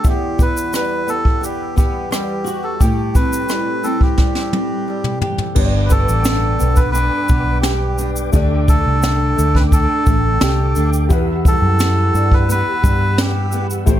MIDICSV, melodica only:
0, 0, Header, 1, 2, 480
1, 0, Start_track
1, 0, Key_signature, 1, "major"
1, 0, Tempo, 691244
1, 31, Time_signature, 4, 2, 24, 8
1, 9721, End_track
2, 0, Start_track
2, 0, Title_t, "Melodica"
2, 0, Program_c, 0, 22
2, 65, Note_on_c, 0, 67, 74
2, 290, Note_on_c, 0, 71, 87
2, 295, Note_off_c, 0, 67, 0
2, 512, Note_off_c, 0, 71, 0
2, 522, Note_on_c, 0, 71, 86
2, 755, Note_on_c, 0, 69, 89
2, 764, Note_off_c, 0, 71, 0
2, 998, Note_on_c, 0, 67, 76
2, 1000, Note_off_c, 0, 69, 0
2, 1219, Note_off_c, 0, 67, 0
2, 1229, Note_on_c, 0, 67, 74
2, 1457, Note_off_c, 0, 67, 0
2, 1467, Note_on_c, 0, 67, 73
2, 1829, Note_on_c, 0, 69, 70
2, 1839, Note_off_c, 0, 67, 0
2, 1942, Note_on_c, 0, 67, 69
2, 1953, Note_off_c, 0, 69, 0
2, 2187, Note_on_c, 0, 71, 86
2, 2193, Note_off_c, 0, 67, 0
2, 2664, Note_on_c, 0, 69, 80
2, 2682, Note_off_c, 0, 71, 0
2, 2790, Note_off_c, 0, 69, 0
2, 2794, Note_on_c, 0, 67, 71
2, 3603, Note_off_c, 0, 67, 0
2, 4067, Note_on_c, 0, 71, 63
2, 4104, Note_on_c, 0, 69, 98
2, 4111, Note_off_c, 0, 71, 0
2, 4694, Note_on_c, 0, 71, 97
2, 4723, Note_off_c, 0, 69, 0
2, 4791, Note_off_c, 0, 71, 0
2, 4801, Note_on_c, 0, 71, 115
2, 5266, Note_off_c, 0, 71, 0
2, 5283, Note_on_c, 0, 67, 77
2, 5628, Note_off_c, 0, 67, 0
2, 6034, Note_on_c, 0, 69, 104
2, 6634, Note_on_c, 0, 71, 96
2, 6648, Note_off_c, 0, 69, 0
2, 6686, Note_off_c, 0, 71, 0
2, 6755, Note_on_c, 0, 69, 108
2, 7234, Note_off_c, 0, 69, 0
2, 7245, Note_on_c, 0, 69, 84
2, 7571, Note_off_c, 0, 69, 0
2, 7969, Note_on_c, 0, 69, 103
2, 8566, Note_on_c, 0, 71, 93
2, 8576, Note_off_c, 0, 69, 0
2, 8676, Note_off_c, 0, 71, 0
2, 8687, Note_on_c, 0, 71, 116
2, 9166, Note_on_c, 0, 67, 85
2, 9172, Note_off_c, 0, 71, 0
2, 9493, Note_off_c, 0, 67, 0
2, 9721, End_track
0, 0, End_of_file